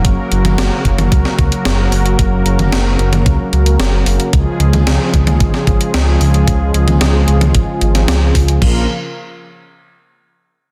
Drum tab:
CC |----------------|----------------|----------------|----------------|
HH |x-xxx-xxx-xxx-ox|x-xxx-xxx-xxx-ox|x-xxx-xxx-xxx-ox|x-xxx-xxx-xxx-ox|
SD |----o----o--o---|----o-------o---|----o----o--o---|----o------oo---|
T2 |---o---o--------|---o---o--------|---o---o--------|---o---o--------|
BD |o-----o-o-o-----|o-------o-------|o-----o-o-o-----|o-------o-----o-|

CC |x---------------|
HH |----------------|
SD |----------------|
T2 |----------------|
BD |o---------------|